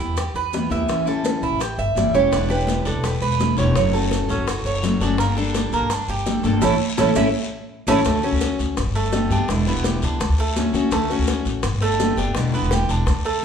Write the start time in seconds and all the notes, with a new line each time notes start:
Already playing: E3 G3 B3 E4
0.00 E4, high conga, maracas
0.07 E2
0.17 G4, muted steel-string acoustic guitar stroke, high bongo, high conga, maracas
0.34 E2 B4, high bongo, high conga, maracas
0.53 E3 G3 B3 E4, high bongo, low bongo, high conga, maracas
0.70 E2 E3 G3 B3 E4 E5, high bongo, high conga, maracas
0.88 A1 E3 G3 C#4 E4, high bongo, high conga, maracas
1.06 G3 C#4 E4 A4, high bongo, high conga, maracas
1.24 high bongo, high conga, maracas
1.42 A1 E4, high conga, maracas
1.51 A1
1.59 G4, muted steel-string acoustic guitar stroke, high bongo, high conga, maracas
1.78 G1 E5, high bongo, high conga, maracas
1.95 F#1 E3 G3 C#4 E4 D5, high bongo, low bongo, high conga, maracas
2.14 E1 G3 C#4 E4 G4 C#5, high bongo, maracas
2.31 E1 B2 D3 G3 B3 D4 E4, high bongo, high conga, long guiro, maracas
2.48 D3 G3 B3 E4 G4 B4, high bongo, high conga, maracas
2.67 high bongo, high conga, short guiro, maracas
2.85 E1 D4 A4, high conga, short guiro, maracas
2.95 E1
3.03 G4 B4, muted steel-string acoustic guitar stroke, high bongo, high conga, long guiro, maracas
3.21 E1 B4, high bongo, high conga, maracas
3.39 D3 G3 B3 E4, high bongo, low bongo, high conga, short guiro, maracas
3.57 E1 D3 G3 B3 E4 C#5, high bongo, high conga, short guiro, maracas
3.74 F#1 C#3 F#3 A3 C#5, high bongo, high conga, long guiro, maracas
3.78 C#4 F#4
3.93 F#3 A3 C#4 F#4 A4, high bongo, high conga, maracas
4.11 high bongo, high conga, short guiro, maracas
4.28 F#1 C#4 A4, high conga, short guiro, maracas
4.38 F#1
4.47 F#4, muted steel-string acoustic guitar stroke, high bongo, high conga, long guiro, maracas
4.64 F#1 C#5, high bongo, high conga, maracas
4.82 F#3 A3 C#4 F#4, high bongo, low bongo, high conga, short guiro, maracas
5.00 F#1 A3 C#4 D4 F#4, high bongo, high conga, short guiro, maracas
5.04 F#3
5.18 G1 D3 G3 A#3 D4 A4, high bongo, long guiro, maracas
5.37 G3 A#3 D4 A4, high bongo, high conga, maracas
5.54 high bongo, high conga, short guiro, maracas
5.72 G1 A#3, high conga, short guiro, maracas
5.81 G1
5.90 D4, muted steel-string acoustic guitar stroke, high bongo, high conga, long guiro, maracas
6.08 G1 G4, high bongo, high conga, maracas
6.26 G3 A#3 D4 A4, high bongo, low bongo, high conga, short guiro, maracas
6.43 G1 G3 A#3 D4 A4, high bongo, high conga, short guiro, maracas
6.61 A1 E3 A3 C#4 E4 A4 C#5, low bongo, high conga, long guiro, maracas
6.97 A1 E3 A3 C#4 E4 A4 C#5, low bongo, high conga, maracas
7.15 A1 E3 A3 C#4 E4 A4 C#5, low bongo, high conga, long guiro, maracas
7.87 A1 E3 A3 C#4 E4 A4 C#5, low bongo, high conga, long guiro, maracas
8.05 D2 D3 A3 C#4 F#4, high bongo, high conga, long guiro, maracas
8.23 A3 C#4 F#4, high bongo, high conga, maracas
8.32 D2
8.41 high bongo, high conga, short guiro, maracas
8.59 D2, high conga, short guiro, maracas
8.77 G1, muted steel-string acoustic guitar stroke, high bongo, high conga, long guiro, maracas
8.86 G1
8.95 A3, high bongo, high conga, maracas
9.12 D3 G3 B3 G4, high bongo, low bongo, high conga, short guiro, maracas
9.30 G2 G3 B3 D4 G4, high bongo, high conga, short guiro, maracas
9.48 E1 B2 D3 G3 B3 E4, high bongo, high conga, long guiro, maracas
9.67 D3 G3 B3 E4, high bongo, high conga, maracas
9.76 E1
9.84 G4, high bongo, high conga, short guiro, maracas
10.02 C#2 D4, high conga, short guiro, maracas
10.20 D2, muted steel-string acoustic guitar stroke, high bongo, high conga, long guiro, maracas
10.29 D2
10.38 A3, high bongo, high conga, maracas
10.56 D3 A3 C#4 F#4, high bongo, low bongo, high conga, short guiro, maracas
10.73 D3 A3 C#4 F#4, high bongo, high conga, short guiro, maracas
10.91 D2 D3 A3 C#4 F#4, high bongo, long guiro, maracas
11.10 A3 C#4 F#4, high bongo, high conga, maracas
11.19 D2
11.27 high bongo, high conga, short guiro, maracas
11.45 A1, high conga, short guiro, maracas
11.63 G1, muted steel-string acoustic guitar stroke, high bongo, high conga, long guiro, maracas
11.72 G1
11.81 A3, high bongo, high conga, maracas
12.00 D3 G3 B3 G4, high bongo, low bongo, high conga, short guiro, maracas
12.17 F#1 G3 B3 D4 G4, high bongo, short guiro, maracas
12.35 E1 B2 D3 G3 B3 E4, high bongo, high conga, long guiro, maracas
12.53 D3 G3 B3 E4, high bongo, high conga, maracas
12.62 E1
12.71 G4, high bongo, high conga, short guiro, maracas
12.89 E1 D4, high conga, short guiro, maracas
13.06 D2, muted steel-string acoustic guitar stroke, high bongo, high conga, long guiro, maracas
13.25 A3, high bongo, high conga, maracas